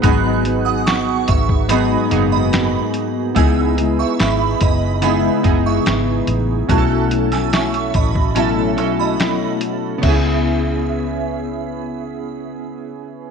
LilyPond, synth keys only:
\new Staff \with { instrumentName = "Synth keys" } { \time 4/4 \key cis \minor \tempo 4 = 72 <b dis' fis' gis'>4. r8 <b dis' fis' gis'>8 <ais b dis' fis' gis'>4 r8 | <b dis' e' gis'>4. r8 <b dis' e' gis'>8 <b dis' e' gis'>4 r8 | <cis' e' fis' gis' a'>4. r8 <cis' e' fis' a'>8 <cis' e' fis' a'>4 r8 | <b cis' e' gis'>1 | }